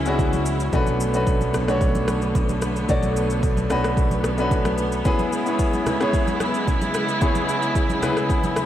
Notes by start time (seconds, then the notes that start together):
Already playing: C#2 C#3 G#3 B3 C#4 E4 F#4 G#4
0.06 G#3 B3 C#4 D4 F#4, shaker
0.14 E4
0.19 kick, low conga, shaker
0.33 high conga, shaker
0.46 shaker
0.60 shaker
0.73 B1 D3 A3 B3 C#4 D4 F#4 B4, kick, low conga, shaker
0.87 high conga, shaker
1.00 shaker
1.14 A3 C#4 D4 F#4 B4, shaker
1.27 kick, shaker
1.41 high conga, shaker
1.54 cross-stick, low conga, shaker
1.68 A3 C#4 D4 F#4 C#5, cross-stick, shaker
1.81 kick, shaker
1.95 high conga, shaker
2.08 cross-stick, high conga, shaker
2.22 shaker
2.35 kick, low conga, shaker
2.49 high conga, shaker
2.62 cross-stick, shaker
2.76 shaker
2.89 B1 A3 D4 F#4 C#5 D5, kick, low conga, shaker
3.03 high conga, shaker
3.17 shaker
3.30 shaker
3.43 kick, shaker
3.57 high conga, shaker
3.70 A3 C#4 D4 F#4 B4, cross-stick, low conga, shaker
3.84 cross-stick, shaker
3.97 kick, shaker
4.11 high conga, shaker
4.24 cross-stick, high conga, shaker
4.38 A3 C#4 D4 F#4 B4, shaker
4.51 kick, low conga, shaker
4.65 cross-stick, high conga, shaker
4.78 shaker
4.92 shaker
5.05 C#3 G#3 B3 C#4 E4 G#4 B4, kick, low conga, shaker
5.19 high conga, shaker
5.33 shaker
5.46 B3 C#4 E4 G#4 C#5, shaker
5.59 kick, shaker
5.73 high conga, shaker
5.86 cross-stick, low conga, shaker
6.00 B3 C#4 E4 G#4 C#5, cross-stick, shaker
6.13 kick, shaker
6.27 high conga, shaker
6.40 cross-stick, high conga, shaker
6.54 shaker
6.67 kick, low conga, shaker
6.81 high conga, shaker
6.94 cross-stick, shaker
7.09 shaker
7.21 B3 C#4 E4 G#4 C#5, kick, low conga, shaker
7.35 high conga, shaker
7.49 shaker
7.62 shaker
7.75 kick, shaker
7.89 high conga, shaker
8.02 B3 C#4 E4 G#4 B4, cross-stick, low conga, shaker
8.17 cross-stick, shaker
8.30 kick, shaker
8.44 high conga, shaker
8.56 B5, cross-stick, high conga, shaker